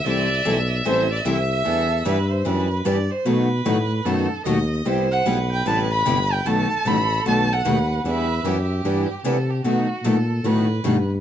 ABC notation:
X:1
M:4/4
L:1/8
Q:"Swing" 1/4=150
K:Em
V:1 name="Violin"
d3 z c d e2- | e4 z4 | z8 | z f2 g a b2 g |
a2 b2 a f2 z | e3 z4 z | z8 |]
V:2 name="Violin"
e8 | A2 B c B2 d c | B4 A2 ^d2 | c2 B6 |
A6 B2 | B2 G4 A G | F2 A2 B3 z |]
V:3 name="Steel-string acoustic guitar"
[E,G,CEA] z [E,G,CEA] z [E,G,CEA] z [E,G,CEA] z | [E,B,DG] z [E,B,DG] z [E,B,DG] z [E,B,DG] z | [B,,F,A,^DF] z [B,,F,A,DF] z [B,,F,A,DF] z [B,,F,A,DF] z | [C,G,B,EG] z [C,G,B,EG] z [C,G,B,EG] z [C,G,B,EG] z |
[B,,F,A,^DF] z [B,,F,A,DF] z [B,,F,A,DF] z [B,,F,A,DF] z | [E,B,DG] z [E,B,DG] z [E,B,DG] z [E,B,DG] z | [B,,F,A,^DF] z [B,,F,A,DF] z [B,,F,A,DF] z [B,,F,A,DF] z |]
V:4 name="Steel-string acoustic guitar"
[E,G,CEA] z [E,G,CEA] z [E,G,CEA] z [E,G,CEA] z | [E,G,DEB] z [E,G,DEB] z [E,G,DEB] z [E,G,DEB] z | [B,,^D,F,B,^DA] z [B,,D,F,B,DA] z [B,,D,F,B,DA] z [B,,D,F,B,DA] z | [C,G,B,EG] z [C,G,B,EG] z [C,G,B,EG] z [C,G,B,EG] z |
[B,,^D,F,B,^DA] z [B,,D,F,B,DA] z [B,,D,F,B,DA] z [B,,D,F,B,DA] z | [E,G,DEB] z [E,G,DEB] z [E,G,DEB] z [E,G,DEB] z | [B,,^D,F,B,^DA] z [B,,D,F,B,DA] z [B,,D,F,B,DA] z [B,,D,F,B,DA] z |]
V:5 name="Tuba" clef=bass
C,,2 B,,,2 A,,,2 C,,2 | E,,2 G,,2 F,,2 G,, z | B,,2 A,,2 F,, F,, ^D,,2 | C,,2 B,,,2 A,,,2 G,,,2 |
B,,, B,,, A,,,2 B,,,2 ^D,,2 | E,,2 F,,2 G,, G,, C,2 | B,, z ^A,,2 =A,,2 G,,2 |]